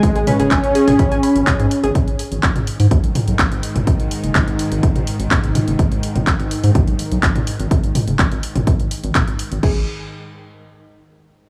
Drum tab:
CC |----------------|----------------|----------------|----------------|
HH |xxoxxxooxxoxxxox|xxoxxxooxxoxxxox|xxoxxxoxxxoxxxox|xxoxxxooxxoxxxox|
CP |----x-------x---|----x-------x---|----x-------x---|----x-------x---|
T2 |--o----o----o---|o----o----o----o|----o----o----o-|---o----o----o--|
BD |o---o---o---o---|o---o---o---o---|o---o---o---o---|o---o---o---o---|

CC |----------------|x---------------|
HH |xxoxxxoxxxoxxxox|----------------|
CP |----x-------x---|----------------|
T2 |--o----o----o---|----------------|
BD |o---o---o---o---|o---------------|